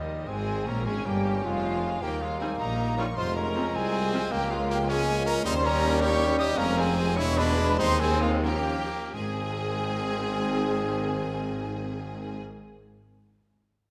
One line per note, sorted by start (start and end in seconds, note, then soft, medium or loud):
0.00 0.27 D#2 medium
0.00 0.27 D#3 medium
0.00 0.30 G3 medium
0.00 0.28 D#4 medium
0.00 0.27 D#5 medium
0.27 0.66 G#1 medium
0.27 0.68 G#1 loud
0.27 0.66 G#2 loud
0.27 0.66 G#3 medium
0.27 0.66 G#3 loud
0.27 0.82 C4 medium
0.27 0.68 C4 medium
0.27 0.66 G#4 loud
0.27 0.66 G#5 medium
0.27 0.66 G#5 loud
0.66 0.88 A#1 medium
0.66 0.87 A#1 loud
0.66 0.86 A#2 loud
0.66 0.86 A#3 loud
0.66 0.86 A#3 medium
0.66 0.85 C#4 medium
0.66 0.86 A#4 loud
0.66 0.86 A#5 loud
0.66 0.87 A#5 medium
0.85 1.06 G#1 loud
0.85 1.05 G#1 loud
0.85 1.06 G#2 medium
0.85 1.05 G#3 medium
0.85 1.06 G#3 loud
0.85 1.08 C#4 loud
0.85 2.04 C#4 loud
0.85 1.05 G#4 loud
0.85 1.05 G#5 loud
0.85 1.06 G#5 loud
1.05 1.44 G1 medium
1.05 1.46 G1 loud
1.05 1.43 G2 loud
1.05 1.44 G3 loud
1.05 1.43 G3 medium
1.05 1.44 A#3 medium
1.05 1.44 G4 loud
1.05 1.43 G5 loud
1.05 1.44 G5 medium
1.44 2.02 F1 loud
1.44 2.02 F2 loud
1.44 2.02 F3 medium
1.44 2.01 F3 loud
1.44 2.01 G#3 medium
1.44 2.02 F4 loud
1.44 2.01 F5 loud
1.44 2.03 F5 loud
2.02 2.50 D#2 medium
2.02 2.50 D#2 loud
2.02 3.13 G3 medium
2.02 2.23 A#3 loud
2.02 3.16 A#3 loud
2.02 3.13 D#4 medium
2.02 2.09 G4 loud
2.02 2.21 G5 loud
2.02 2.08 G5 medium
2.21 2.40 G#3 medium
2.21 2.41 F4 loud
2.21 2.40 F5 loud
2.39 2.50 G3 medium
2.39 2.59 C4 medium
2.39 2.50 D#4 medium
2.39 2.48 G#4 loud
2.39 2.45 G#5 medium
2.39 2.60 G#5 loud
2.59 3.08 A#1 medium
2.59 3.08 A#2 loud
2.59 2.97 D#4 loud
2.59 2.97 A#4 loud
2.59 2.97 A#5 loud
2.59 2.98 A#5 loud
2.97 3.07 G3 medium
2.97 3.07 D#4 medium
2.97 3.06 F4 loud
2.97 3.05 C#5 loud
2.97 3.16 C#6 medium
2.97 3.17 C#6 loud
3.15 3.65 F1 loud
3.15 3.65 F2 loud
3.15 4.29 G#3 loud
3.15 4.32 G#3 medium
3.15 3.36 F4 loud
3.15 5.45 F4 loud
3.15 3.36 C5 loud
3.15 3.35 C6 medium
3.15 3.36 C6 loud
3.34 3.76 C#4 loud
3.34 3.73 A#4 loud
3.34 3.73 A#5 loud
3.34 3.74 A#5 loud
3.56 3.64 F3 medium
3.56 3.64 C4 medium
3.74 4.22 C2 loud
3.74 4.33 C4 loud
3.74 4.31 G#4 loud
3.74 4.08 G#5 loud
3.74 4.31 G#5 loud
4.12 4.21 F3 loud
4.12 4.21 C4 medium
4.31 5.41 C#2 loud
4.31 5.41 C#2 medium
4.31 5.42 C#2 loud
4.31 5.41 F3 loud
4.31 5.41 A#3 medium
4.31 4.52 A#3 loud
4.31 4.90 A#3 loud
4.31 5.43 A#3 loud
4.31 4.50 G4 loud
4.31 4.50 G5 loud
4.50 4.69 G#3 loud
4.50 4.70 F4 loud
4.50 4.70 F5 loud
4.50 4.69 F5 loud
4.68 4.78 A#3 loud
4.68 4.78 G4 loud
4.68 4.88 G5 loud
4.88 5.44 G#3 loud
4.88 5.26 C#4 loud
4.88 5.26 G#4 loud
4.88 5.26 G#5 loud
5.26 5.45 C#4 loud
5.26 5.34 A#4 loud
5.26 5.45 A#5 loud
5.44 6.56 D#2 loud
5.44 6.58 G3 loud
5.44 6.54 G3 loud
5.44 6.56 G3 loud
5.44 6.58 C#4 loud
5.44 6.54 C#4 loud
5.44 5.54 D#4 loud
5.44 5.64 C5 loud
5.44 5.63 C6 loud
5.44 5.64 C6 loud
5.63 6.03 C#4 loud
5.63 6.02 A#4 loud
5.63 6.00 A#5 loud
5.63 6.02 A#5 loud
6.01 6.38 G4 loud
6.01 6.39 C#5 loud
6.01 6.38 C#6 loud
6.01 6.39 C#6 loud
6.38 6.59 G4 loud
6.38 6.58 D#5 loud
6.38 6.44 D#6 loud
6.38 6.46 D#6 loud
6.57 7.16 F1 loud
6.57 7.19 F1 loud
6.57 7.16 F2 loud
6.57 8.40 G#3 loud
6.57 6.96 A#3 loud
6.57 7.17 C4 loud
6.57 7.13 C4 loud
6.57 6.79 C#4 loud
6.57 6.77 A#4 loud
6.57 6.77 A#5 loud
6.77 7.19 C4 loud
6.77 7.17 G#4 loud
6.77 7.17 G#5 loud
7.16 7.80 E1 loud
7.16 7.79 E1 loud
7.16 7.79 E2 loud
7.16 7.80 G#3 loud
7.16 7.77 D4 loud
7.16 7.74 D4 medium
7.16 7.39 E4 loud
7.16 7.36 C#5 loud
7.16 7.37 C#6 loud
7.36 7.78 D4 loud
7.36 7.78 B4 loud
7.36 7.77 B5 loud
7.36 7.79 B5 loud
7.77 8.91 D#2 loud
7.77 8.40 C4 loud
7.77 8.44 C4 loud
7.77 8.02 D#4 loud
7.77 7.99 C5 loud
7.77 7.99 C6 loud
7.98 8.23 C4 loud
7.98 8.21 G#4 loud
7.98 8.20 G#5 loud
7.98 8.21 G#5 loud
8.21 8.45 G#3 loud
8.21 8.29 F4 loud
8.21 8.44 F5 loud
8.21 8.30 F5 loud
8.43 8.87 F3 medium
8.43 8.90 F3 loud
8.43 9.13 A#3 loud
8.43 8.78 A#3 medium
8.43 8.87 C#4 medium
8.43 8.90 C#4 medium
8.43 9.13 G4 loud
8.43 9.13 G5 loud
8.43 9.12 G5 loud
9.13 12.40 G#1 loud
9.13 12.40 G#1 medium
9.13 12.40 G#2 loud
9.13 12.39 D#3 medium
9.13 12.40 D#3 medium
9.13 12.39 C4 medium
9.13 12.40 C4 loud
9.13 12.39 G#4 loud
9.13 12.40 G#4 loud
9.13 12.38 G#5 loud
9.13 12.40 G#5 medium